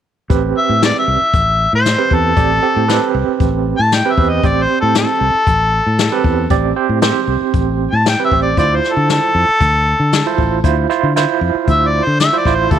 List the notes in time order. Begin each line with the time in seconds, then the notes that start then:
0.30 A1 C4 G4 B4, kick, closed hi-hat
0.58 E5
0.69 A2
0.82 D5, snare, closed hi-hat
0.98 E5
1.08 C2
1.33 A1, kick, closed hi-hat
1.73 A2 C5
1.85 snare, closed hi-hat
1.98 C4 G4 B4
2.11 E2 A4, kick
2.37 A1 C4 G4 D5, kick, closed hi-hat
2.63 C4 G4 A4
2.76 A2
2.88 C4 G4 B4, snare, closed hi-hat
3.15 C2
3.28 muted fingered electric bass stroke
3.40 A1, kick, closed hi-hat
3.77 A2 A5
3.92 G5, snare, closed hi-hat
4.05 C4 G4 B4
4.12 E5
4.17 E2 C4 G4 B4, kick
4.29 D#5
4.43 A1 C4 G4 C5 D5, kick, closed hi-hat
4.62 C5
4.80 A2 A4
4.95 A4, snare, closed hi-hat
5.21 C2
5.47 A1, kick, closed hi-hat
5.87 A2
5.98 snare, closed hi-hat
6.12 C4 G4 B4
6.24 E2, kick
6.50 A1 C4 G4 D5, kick, closed hi-hat
6.76 C4 G4 C5
6.89 A2
7.02 C4 G4 C5, snare, closed hi-hat
7.28 C2
7.41 muted fingered electric bass stroke
7.54 A1, kick, closed hi-hat
7.91 A2 A5
8.06 G5, snare, closed hi-hat
8.20 C4 G4 B4
8.25 E5
8.31 A1 C4 G4 C5, kick
8.42 D5
8.57 D2 E4 F4 C5 D5, kick, closed hi-hat
8.76 C5
8.84 snare
8.94 D3 A4
9.09 A4, snare, closed hi-hat
9.35 F2
9.49 muted fingered electric bass stroke
9.61 D2, kick, closed hi-hat
10.00 D3
10.12 snare, closed hi-hat
10.26 E4 F4 C5
10.38 A1, kick
10.64 D2 E4 F4 C5, kick, closed hi-hat
10.90 E4 F4 C5, snare
11.03 D3
11.16 E4 F4 C5, snare, closed hi-hat
11.41 F2
11.55 muted fingered electric bass stroke
11.68 D2 E5, kick, closed hi-hat
11.87 D5
12.04 D3 C5
12.20 E5, snare, closed hi-hat
12.33 E4 F4 C5
12.38 D5
12.45 A1 E4 F4 C5, kick, snare
12.55 C5
12.71 D2 E4 F4 G4 A4, kick, closed hi-hat